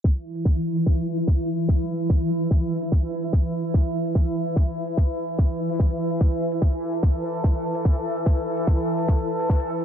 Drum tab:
HH |xx-xxx-xxx-xxx-x|xx-xxx-xxx-xxx-x|xx-xxx-xxx-xxx-x|xx-xxx-xxx-xxx-x|
BD |o---o---o---o---|o---o---o---o---|o---o---o---o---|o---o---o---o---|

HH |xx-xxx-xxx-xxx-x|xx-xxx-xxx-xxx-x|
BD |o---o---o---o---|o---o---o---o---|